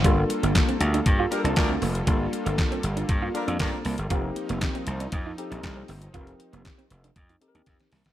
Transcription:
<<
  \new Staff \with { instrumentName = "Tine electric piano" } { \time 4/4 \key g \minor \tempo 4 = 118 <bes d' f' a'>4. r4 <bes d' f' g' a'>4 r8 | <bes d' f' a'>4. r4 <bes d' f' a'>4 r8 | <c' ees' g' bes'>4. r4 <c' ees' g' a'>4 r8 | <c' ees' g' bes'>4. r4 <c' ees' g' a' bes'>4 r8 | }
  \new Staff \with { instrumentName = "Analog synth pad" } { \time 4/4 \key g \minor << { <g f' a'>1~ | <g f' a'>1 | <f c' ees'>1~ | <f c' ees'>1 | } \\ { bes1~ | bes1~ | bes1~ | bes1 | } >> }
  \new Staff \with { instrumentName = "Clean electric guitar" } { \time 4/4 \key g \minor g16 r8 bes16 r16 c'16 r16 d'16 r16 f'16 r16 d'16 r16 c'16 bes16 r16 | g16 r8 bes16 r16 c'16 r16 d'16 r16 f'16 r16 d'16 r16 c'16 bes16 r16 | f'16 r8 bes16 r16 c'16 r16 d'16 r16 ees'16 r16 d'16 r16 c'16 bes16 r16 | f'16 r8 bes16 r16 c'16 r16 d'16 r16 ees'16 r16 d'16 r16 c'16 bes16 r16 | }
  \new Staff \with { instrumentName = "Horn section" } { \time 4/4 \key g \minor r2 r8 <f bes d' bes'>16 r16 <f bes d' bes'>8 r8 | r2 r8 <f bes d' bes'>16 r16 <f bes d' bes'>8 r8 | r1 | r1 | }
  \new Staff \with { instrumentName = "Slap bass" } { \clef bass \time 4/4 \key g \minor g,,8 r16 g,,16 r8 d,8 g,8 r16 c,16 d,8 f,,8 | g,,8 r16 g,,16 r8 g,,8 g,8 r16 f,16 g,16 r16 c,16 g,,16 | f,,8 r16 f,,16 r8 c,8 f,8 r16 bes,,16 c,8 g,,8 | f,,8 r16 f,,16 r8 f,,8 f,8 r16 ees,16 f,16 r16 c,16 g,,16 | }
  \new DrumStaff \with { instrumentName = "Drums" } \drummode { \time 4/4 <hh bd>8 hh16 hh16 <hc hh bd sn>16 hh16 hh16 hh16 <hh bd>8 hh16 hh16 <hc hh bd sn>8 hho16 hh16 | <hh bd>8 hh16 hh16 <hc hh bd sn>16 hh16 hh16 hh16 <hh bd>8 hh16 hh16 <hc hh bd sn>8 hho16 hh16 | <hh bd>8 hh16 hh16 <hc hh bd sn>16 hh16 hh16 hh16 <hh bd>8 hh16 hh16 <hc hh bd sn>8 hho16 hh16 | <hh bd>16 hh16 hh16 hh16 <hc hh bd sn>16 hh16 hh16 hh16 <hh bd>16 hh16 hh16 hh16 <hh bd sn>16 <hh sn>16 <hho sn>16 <hh sn>16 | }
>>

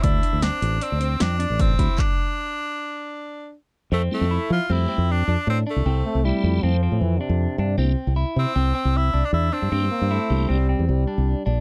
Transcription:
<<
  \new Staff \with { instrumentName = "Clean electric guitar" } { \time 5/4 \key f \major \tempo 4 = 155 d'4 c'4 d'8 c'4 d'4 e'8 | r1 r4 | c'4 e'4 c'8 c'4 d'4 d'8 | c'4 e'4 c'8 c'4 d'4 d'8 |
c'4 e'4 c'8 c'4 d'4 d'8 | c'4 e'4 c'8 c'4 d'4 d'8 | }
  \new Staff \with { instrumentName = "Tenor saxophone" } { \time 5/4 \key f \major e'4 d'4 c'4 d'4 c'4 | d'1 r4 | a8 a4 f'8 e'4 d'4 c'8 a8~ | a4 r1 |
r4. c'4. e'8. d'16 e'8 c'8~ | c'2~ c'8 r2 r8 | }
  \new Staff \with { instrumentName = "Tonewheel organ" } { \time 5/4 \key f \major r1 r4 | r1 r4 | r8 <g a c' e'>8 r4 <g a c' g'>8 r2 r8 | r4 <g a c' e'>4 <g a c' e'>8 r2 r8 |
<g bes d' e'>8 r1 r8 | <g bes d' g'>8 r4 <g bes d' g'>8 r2. | }
  \new Staff \with { instrumentName = "Trombone" } { \clef bass \time 5/4 \key f \major r1 r4 | r1 r4 | r1 r4 | r8 a8 g4 f4 e8 c4.~ |
c8 r1 r8 | r8 bes8 a4 g4 g4.~ g16 r16 | }
  \new Staff \with { instrumentName = "Fingered electric bass" } { \clef bass \time 5/4 \key f \major d,8 r16 d,8 r16 a,,8 r16 d,8. f,8. a,,8. d,16 r16 | r1 r4 | f,8 r16 f,8 r16 f16 r16 f,8 r16 f,8. f,16 r16 a,8 r16 c,16 | c,8 r16 c,8 r16 f,8 f,8. a,16 f,8 r16 f,8 r16 g,8 |
c,8 r16 c,8 r16 c16 r16 c,8 r16 c,8. c,16 r16 e,8 r16 g,16 | g,8 r16 g,8 r16 c,8 c,8. e,16 c,8 r16 c,8 r16 bes,,8 | }
  \new DrumStaff \with { instrumentName = "Drums" } \drummode { \time 5/4 <hh bd>8 hh8 <hh sn>8 hh8 hh8 hh8 <hh sn>8 hh8 <hh bd>8 <hh bd>8 | <hc bd>4 r4 r4 r4 r4 | r4 r4 r4 r4 r4 | r4 r4 r4 r4 r4 |
r4 r4 r4 r4 r4 | r4 r4 r4 r4 r4 | }
>>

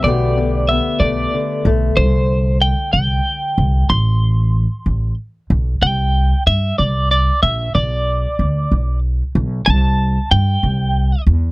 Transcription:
<<
  \new Staff \with { instrumentName = "Clean electric guitar" } { \time 6/8 \key c \major \tempo 4. = 62 d''4 e''8 d''4 r8 | c''4 g''8 g''4. | c'''2 r4 | g''4 e''8 d''8 d''8 e''8 |
d''2 r4 | a''4 g''4. r8 | }
  \new Staff \with { instrumentName = "Steel-string acoustic guitar" } { \time 6/8 \key c \major << { <d a b g'>4 b8 a4 a8 | r2. | r2. | r2. |
r2. | r2. | } \\ { b,8 d4. d4~ | d2. | r2. | r2. |
r2. | r2. | } >> }
  \new Staff \with { instrumentName = "Upright bass" } { \clef bass \time 6/8 \key c \major b,,4. b,,8 r8 b,,8 | c,4. c,8 r8 c,8 | a,,4. a,,8 r8 b,,8 | c,4 g,8 c,4 bes,,8 |
b,,4 d,8 b,,4 b,,8 | c,4 g,8 c,4 e,8 | }
>>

